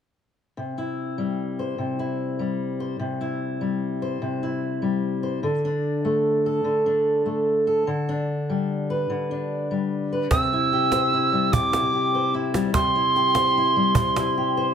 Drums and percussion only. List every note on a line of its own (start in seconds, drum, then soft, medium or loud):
10.31 cajon bass medium
10.31 cajon slap soft
10.72 cajon slap soft
10.92 cajon slap soft
11.53 cajon bass medium
11.73 cajon slap medium
12.54 cajon slap medium
12.74 cajon bass medium
12.74 cajon slap soft
13.15 cajon slap soft
13.35 cajon slap medium
13.95 cajon bass medium
14.16 cajon slap medium